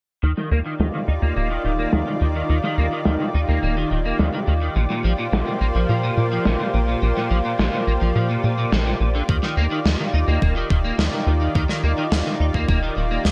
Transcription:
0.23 D#2 D#3 D#4 F4 G4 D5
0.37 D#3, snare
0.51 D#2 A#3
0.66 D#3
0.80 D#2 D#3, snare
0.94 D#3
1.08 D#2 D#4
1.22 D#2 A#3
1.36 D#1 A#3
1.51 D#3
1.65 D#1 D#3
1.79 A#3
1.93 D#2 D#3, snare
2.07 D#3
2.21 D#2 D#3
2.35 D#3
2.50 D#2 D#3
2.64 D#3, snare
2.78 D#2 A#3
2.92 D#3
3.05 D#2 D#3, snare
3.20 D#3
3.35 D#2 D#4
3.49 D#2 A#3
3.63 D#1 A#3
3.77 D#3
3.91 D#1 D#3
4.05 A#3
4.19 D#2 D#3, snare
4.34 D#3
4.48 D#2 D#3
4.62 D#3
4.76 A#1 A#2 A#3 F4 C5 D5
4.90 A#2, snare
5.04 A#1 F3
5.18 A#2
5.33 A#1 A#2, snare
5.47 A#2
5.61 A#1 A#3
5.75 A#1 F3
5.89 A#2 F3
6.03 A#2
6.17 A#2
6.32 F3
6.45 A#1 A#2, snare
6.60 A#2
6.74 A#1 A#2
6.88 A#2
7.02 A#1 A#2
7.17 A#2, snare
7.31 A#1 F3
7.45 A#2
7.59 A#1 A#2, snare
7.73 A#2
7.87 A#1 A#3
8.01 A#1 F3
8.16 A#2 F3
8.30 A#2
8.44 A#2
8.58 A#2
8.72 A#1 A#2, snare
8.86 A#2
9.00 A#1 A#2
9.15 D3
9.29 D#2 D#3 D#4 F4, kick
9.43 D#3, snare
9.57 D#2 A#3
9.71 D#3
9.85 D#2 D#3, snare
10.00 D#3
10.14 D#2 D#4
10.28 D#2 A#3
10.42 D#1 A#3, kick
10.56 D#3
10.70 D#1 D#3, kick
10.84 A#3
10.99 D#2 D#3, snare
11.13 D#3
11.27 D#2 D#3
11.41 D#3
11.55 D#2 D#3, kick
11.69 D#3, snare
11.83 D#2 A#3
11.98 D#3
12.12 D#2 D#3, snare
12.26 D#3
12.40 D#2 D#4
12.54 D#2 A#3, kick
12.69 D#1 A#3, kick
12.83 D#3
12.97 D#1 D#3
13.11 A#3
13.25 D#2 D#3, snare

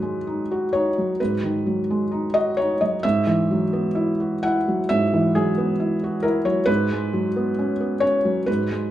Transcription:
Already playing: G#2 D#3 F#3 B4
0.02 G#3
0.27 D#4
0.51 F#4
0.73 D#4 C#5
0.98 F#3
1.20 G#2 B4
1.43 D#3
1.66 F#3
1.90 G#3
2.11 D#4
2.34 F#4 D#5
2.57 D#4 C#5
2.81 F#3 D#5
3.03 G#2 E5
3.27 E3
3.51 F#3
3.73 B3
3.95 E4
4.20 F#4
4.43 E4 F#5
4.68 F#3
4.89 G#2 E5
5.14 E3
5.35 F#3 G#4
5.58 B3
5.80 E4
6.04 F#4
6.23 E4 A#4
6.45 F#3 C#5
6.66 G#2 B4
6.92 G#3
7.13 F#3
7.36 B3
7.59 C#4
7.80 B3
8.00 C#4 C#5
8.25 F#3
8.46 G#2 B4
8.71 G#3

